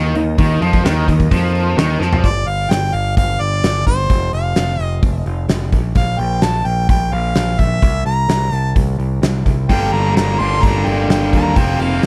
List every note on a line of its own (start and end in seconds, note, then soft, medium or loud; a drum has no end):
0.00 0.14 D#2 medium
0.00 0.15 D#3 loud
0.00 2.21 A#3 medium
0.00 2.20 D#4 medium
0.00 2.20 A#4 medium
0.00 2.21 D#5 medium
0.15 0.37 D#2 medium
0.15 0.34 D#3 medium
0.15 open hi-hat medium
0.38 0.60 D#2 loud
0.38 0.61 D#3 loud
0.38 kick loud
0.38 open hi-hat medium
0.61 0.83 F2 medium
0.61 0.84 F3 medium
0.61 open hi-hat medium
0.73 kick medium
0.85 1.06 D#2 medium
0.85 1.07 D#3 loud
0.85 snare medium
0.85 open hi-hat medium
1.08 1.30 D#2 medium
1.08 1.27 D#3 medium
1.08 kick medium
1.08 open hi-hat medium
1.20 kick medium
1.31 1.74 F2 medium
1.31 1.77 F3 loud
1.31 kick medium
1.31 open hi-hat medium
1.55 open hi-hat medium
1.77 1.99 D#2 medium
1.77 2.00 D#3 loud
1.77 snare loud
1.77 open hi-hat medium
2.00 2.22 F2 medium
2.00 2.23 F3 medium
2.00 snare medium
2.13 floor tom medium
2.24 2.46 G1 medium
2.24 2.49 D5 medium
2.24 kick medium
2.24 open hi-hat medium
2.46 2.69 G1 medium
2.46 2.72 F5 medium
2.46 open hi-hat soft
2.69 2.92 G1 medium
2.69 2.96 G5 medium
2.69 snare medium
2.69 open hi-hat medium
2.93 3.15 G1 medium
2.93 3.17 F5 medium
2.93 open hi-hat soft
3.17 3.39 G1 medium
3.17 3.43 F5 medium
3.17 kick loud
3.17 open hi-hat medium
3.40 3.62 G1 medium
3.40 3.86 D5 medium
3.40 open hi-hat soft
3.64 3.85 G1 medium
3.64 snare medium
3.64 open hi-hat medium
3.86 4.08 G1 medium
3.86 4.30 C5 medium
3.86 kick medium
3.86 open hi-hat soft
4.10 4.32 F1 medium
4.10 kick loud
4.10 open hi-hat medium
4.33 4.55 F1 medium
4.33 4.83 F5 medium
4.33 open hi-hat soft
4.56 4.78 F1 medium
4.56 snare medium
4.56 open hi-hat medium
4.79 5.01 F1 medium
4.79 4.99 D#5 medium
4.79 open hi-hat soft
5.03 5.25 F1 medium
5.03 kick loud
5.03 open hi-hat medium
5.26 5.48 F1 medium
5.26 open hi-hat soft
5.48 5.71 F1 medium
5.48 snare medium
5.48 open hi-hat medium
5.72 5.94 A#1 medium
5.72 kick medium
5.72 open hi-hat soft
5.95 6.18 A#1 medium
5.95 6.21 F5 medium
5.95 kick medium
5.95 open hi-hat medium
6.18 6.41 A#1 medium
6.18 6.44 G5 medium
6.18 open hi-hat soft
6.42 6.64 A#1 medium
6.42 6.67 A5 medium
6.42 snare medium
6.42 open hi-hat medium
6.65 6.87 A#1 medium
6.65 6.89 G5 medium
6.65 open hi-hat soft
6.89 7.11 A#1 medium
6.89 7.15 G5 medium
6.89 kick loud
6.89 open hi-hat medium
7.12 7.34 A#1 medium
7.12 7.61 F5 medium
7.12 open hi-hat soft
7.35 7.58 A#1 medium
7.35 snare medium
7.35 open hi-hat medium
7.59 7.81 A#1 medium
7.59 8.05 E5 medium
7.59 kick medium
7.59 open hi-hat soft
7.82 8.04 C2 medium
7.82 kick medium
7.82 open hi-hat medium
8.06 8.28 C2 medium
8.06 8.52 A#5 medium
8.06 open hi-hat soft
8.29 8.51 C2 medium
8.29 snare loud
8.29 open hi-hat medium
8.52 8.74 C2 medium
8.52 8.72 A5 medium
8.52 open hi-hat soft
8.76 8.98 C2 medium
8.76 kick medium
8.76 open hi-hat medium
8.99 9.21 C2 medium
8.99 open hi-hat soft
9.22 9.44 C2 medium
9.22 snare loud
9.22 open hi-hat medium
9.46 9.68 C2 medium
9.46 kick medium
9.46 open hi-hat soft
9.69 9.91 G1 medium
9.69 10.38 G2 medium
9.69 10.39 D3 loud
9.69 10.39 G3 loud
9.69 10.39 A#3 loud
9.69 10.38 D4 loud
9.69 9.94 G5 medium
9.69 kick loud
9.69 open hi-hat medium
9.92 10.15 G1 medium
9.92 10.16 A#5 medium
9.92 open hi-hat soft
10.16 10.38 G1 medium
10.16 10.41 A#5 medium
10.16 snare loud
10.16 open hi-hat medium
10.39 10.62 G1 medium
10.39 11.55 G2 medium
10.39 11.56 D3 medium
10.39 11.56 G3 medium
10.39 11.57 A#3 medium
10.39 11.55 D4 medium
10.39 10.65 C6 medium
10.39 open hi-hat soft
10.63 10.85 G1 medium
10.63 10.88 A#5 loud
10.63 kick medium
10.63 open hi-hat medium
10.86 11.08 G1 medium
10.86 11.09 G5 medium
10.86 open hi-hat soft
11.09 11.31 G1 medium
11.09 11.35 G5 medium
11.09 snare medium
11.09 open hi-hat medium
11.33 11.55 D#2 medium
11.33 11.59 A#5 medium
11.33 kick medium
11.33 open hi-hat soft
11.55 11.78 F1 medium
11.55 12.06 F2 medium
11.55 12.06 C3 loud
11.55 12.06 F3 medium
11.55 12.06 A#3 loud
11.55 12.06 C4 loud
11.55 11.83 G5 medium
11.55 kick loud
11.55 open hi-hat medium
11.80 12.02 F1 medium
11.80 12.04 F5 medium
11.80 open hi-hat soft
12.03 open hi-hat medium